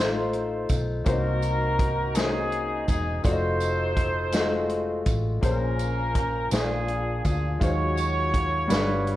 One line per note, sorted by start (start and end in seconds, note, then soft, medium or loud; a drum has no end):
0.00 0.65 A1 loud
0.00 1.07 A2 medium
0.00 1.08 A3 medium
0.00 0.66 D#4 medium
0.00 1.08 D#4 medium
0.00 0.66 F4 medium
0.00 1.07 F4 medium
0.00 0.70 C5 loud
0.00 1.07 C5 medium
0.33 closed hi-hat soft
0.69 1.03 B1 medium
0.69 kick medium
0.69 closed hi-hat medium
0.69 tambourine medium
1.04 2.84 C2 medium
1.04 2.11 C3 medium
1.04 2.02 A#3 medium
1.04 1.12 C#4 medium
1.04 2.03 F#4 medium
1.04 2.12 A#4 medium
1.04 2.04 C5 medium
1.04 kick loud
1.04 closed hi-hat medium
1.04 tambourine soft
1.08 2.12 D#4 medium
1.08 2.06 D#4 medium
1.08 2.12 F#4 medium
1.42 closed hi-hat soft
1.42 tambourine medium
1.79 kick medium
1.79 closed hi-hat medium
2.14 3.12 A#3 medium
2.14 2.22 C#4 soft
2.14 3.21 D#4 medium
2.14 3.13 F#4 medium
2.14 2.86 G#4 loud
2.14 3.13 C5 medium
2.14 snare medium
2.14 closed hi-hat medium
2.14 tambourine medium
2.22 3.16 D#4 medium
2.52 closed hi-hat soft
2.87 3.22 E1 medium
2.87 3.21 G#4 medium
2.87 kick medium
2.87 closed hi-hat medium
2.87 tambourine medium
3.23 5.02 F1 medium
3.23 4.20 A3 medium
3.23 5.03 D#4 medium
3.23 4.21 F4 medium
3.23 4.21 F#4 medium
3.23 5.03 A4 medium
3.23 5.02 C5 loud
3.23 3.31 D5 medium
3.23 kick loud
3.23 closed hi-hat medium
3.23 tambourine soft
3.32 4.25 D#5 medium
3.61 closed hi-hat soft
3.61 tambourine medium
3.97 kick medium
3.97 closed hi-hat medium
4.32 4.39 G#3 medium
4.32 5.30 F4 medium
4.32 5.30 F#4 medium
4.32 5.31 D#5 medium
4.32 snare medium
4.32 closed hi-hat medium
4.32 tambourine medium
4.39 5.33 A3 medium
4.70 closed hi-hat soft
5.06 5.40 A1 medium
5.06 kick medium
5.06 closed hi-hat medium
5.06 tambourine medium
5.41 6.48 A#1 loud
5.41 6.48 A#2 medium
5.41 6.39 A#3 medium
5.41 6.39 C#4 medium
5.41 6.48 C#4 medium
5.41 6.48 F4 medium
5.41 6.40 G#4 medium
5.41 6.48 A#4 medium
5.41 6.40 C5 medium
5.41 kick medium
5.41 closed hi-hat medium
5.41 tambourine soft
5.79 closed hi-hat soft
5.79 tambourine medium
6.15 kick medium
6.15 closed hi-hat medium
6.51 7.21 A#1 medium
6.51 7.57 A#2 medium
6.51 7.48 A#3 medium
6.51 7.58 D4 medium
6.51 7.49 F4 medium
6.51 7.58 F4 medium
6.51 7.22 G#4 medium
6.51 7.49 G#4 medium
6.51 6.59 C5 medium
6.51 snare loud
6.51 closed hi-hat medium
6.51 tambourine medium
6.60 7.53 D5 medium
6.88 closed hi-hat soft
7.24 7.58 D2 medium
7.24 7.58 G#4 medium
7.24 kick medium
7.24 closed hi-hat medium
7.24 tambourine medium
7.59 8.66 D#2 loud
7.59 8.66 D#3 medium
7.59 8.59 F#3 medium
7.59 8.57 G#3 medium
7.59 7.68 C5 medium
7.59 9.16 C#5 loud
7.59 8.58 F5 medium
7.59 kick loud
7.59 closed hi-hat medium
7.59 tambourine soft
7.64 9.16 F4 medium
7.64 9.16 F#4 medium
7.69 8.62 C#5 medium
7.97 closed hi-hat soft
7.97 tambourine medium
8.34 kick medium
8.34 closed hi-hat medium
8.68 9.16 G1 loud
8.68 9.16 G2 medium
8.68 9.16 G3 medium
8.68 9.16 D4 medium
8.68 9.16 B4 medium
8.68 9.16 F5 medium
8.68 closed hi-hat medium
8.68 tambourine medium
8.72 snare loud
9.07 closed hi-hat soft